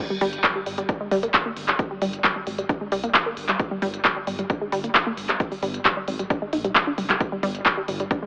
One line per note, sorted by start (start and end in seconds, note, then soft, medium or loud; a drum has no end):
0.10 0.17 G3 medium
0.21 0.37 G1 loud
0.21 0.29 G3 loud
0.21 open hi-hat loud
0.33 closed hi-hat medium
0.44 0.54 G3 medium
0.44 kick loud
0.44 clap loud
0.44 closed hi-hat medium
0.55 0.60 G3 medium
0.66 0.82 G1 medium
0.66 0.74 G3 medium
0.66 open hi-hat loud
0.78 0.82 G3 medium
0.78 closed hi-hat medium
0.89 0.96 D4 medium
0.89 kick loud
0.89 closed hi-hat medium
1.01 1.08 G#3 medium
1.11 1.27 G1 medium
1.11 1.19 G3 loud
1.11 open hi-hat loud
1.23 1.27 A#3 medium
1.23 closed hi-hat medium
1.34 kick loud
1.34 clap loud
1.34 closed hi-hat medium
1.46 1.53 A#3 medium
1.57 1.72 G1 loud
1.57 open hi-hat loud
1.68 1.75 G3 medium
1.68 clap medium
1.68 closed hi-hat medium
1.79 kick loud
1.79 closed hi-hat medium
1.91 1.98 G3 medium
2.02 2.17 G1 medium
2.02 2.09 G3 loud
2.02 open hi-hat loud
2.13 closed hi-hat medium
2.24 2.35 G3 medium
2.24 kick loud
2.24 clap loud
2.24 closed hi-hat medium
2.36 2.40 G3 medium
2.47 2.62 G#1 loud
2.47 2.54 G3 medium
2.47 open hi-hat loud
2.58 2.63 G3 medium
2.58 closed hi-hat medium
2.69 2.77 D4 medium
2.69 kick loud
2.69 closed hi-hat medium
2.81 2.88 G#3 medium
2.92 3.07 C2 medium
2.92 2.99 G3 loud
2.92 open hi-hat loud
3.04 3.08 A#3 medium
3.04 closed hi-hat medium
3.14 kick loud
3.14 clap loud
3.14 closed hi-hat medium
3.26 3.33 A#3 medium
3.37 3.53 G1 loud
3.37 open hi-hat loud
3.49 3.56 G3 medium
3.49 clap medium
3.49 closed hi-hat medium
3.60 kick loud
3.60 closed hi-hat medium
3.71 3.78 G3 medium
3.82 3.98 G1 loud
3.82 3.90 G3 loud
3.82 open hi-hat loud
3.94 closed hi-hat medium
4.05 4.15 G3 medium
4.05 kick loud
4.05 clap loud
4.05 closed hi-hat medium
4.16 4.21 G3 medium
4.27 4.43 G1 medium
4.27 4.35 G3 medium
4.27 open hi-hat loud
4.39 4.43 G3 medium
4.39 closed hi-hat medium
4.50 4.57 D4 medium
4.50 kick loud
4.50 closed hi-hat medium
4.61 4.68 G#3 medium
4.72 4.88 G1 medium
4.72 4.80 G3 loud
4.72 open hi-hat loud
4.84 4.88 A#3 medium
4.84 closed hi-hat medium
4.95 kick loud
4.95 clap loud
4.95 closed hi-hat medium
5.07 5.14 A#3 medium
5.17 5.33 G1 loud
5.17 open hi-hat loud
5.29 5.36 G3 medium
5.29 clap medium
5.29 closed hi-hat medium
5.40 kick loud
5.40 closed hi-hat medium
5.52 5.59 G3 medium
5.52 open hi-hat medium
5.63 5.78 G1 medium
5.63 5.70 G3 loud
5.63 open hi-hat loud
5.74 closed hi-hat medium
5.85 5.96 G3 medium
5.85 kick loud
5.85 clap loud
5.85 closed hi-hat medium
5.97 6.01 G3 medium
6.08 6.23 G#1 loud
6.08 6.15 G3 medium
6.08 open hi-hat loud
6.19 6.24 G3 medium
6.19 closed hi-hat medium
6.30 6.38 D4 medium
6.30 kick loud
6.30 closed hi-hat medium
6.42 6.49 G#3 medium
6.53 6.68 A#1 loud
6.53 6.60 D#4 medium
6.53 open hi-hat loud
6.64 6.71 G3 medium
6.64 closed hi-hat medium
6.75 kick loud
6.75 clap loud
6.75 closed hi-hat medium
6.87 6.94 D4 medium
6.98 7.13 F1 loud
6.98 7.05 G3 medium
6.98 open hi-hat loud
7.10 7.20 G3 medium
7.10 clap medium
7.10 closed hi-hat medium
7.21 kick loud
7.21 closed hi-hat medium
7.32 7.39 G3 medium
7.43 7.59 G1 loud
7.43 7.51 G3 loud
7.43 open hi-hat loud
7.55 closed hi-hat medium
7.66 7.76 G3 medium
7.66 kick loud
7.66 clap loud
7.66 closed hi-hat medium
7.77 7.81 G3 medium
7.88 8.04 G1 medium
7.88 7.96 G3 medium
7.88 open hi-hat loud
8.00 8.04 G3 medium
8.00 closed hi-hat medium
8.11 8.18 D4 medium
8.11 kick loud
8.11 closed hi-hat medium
8.22 8.26 G#3 medium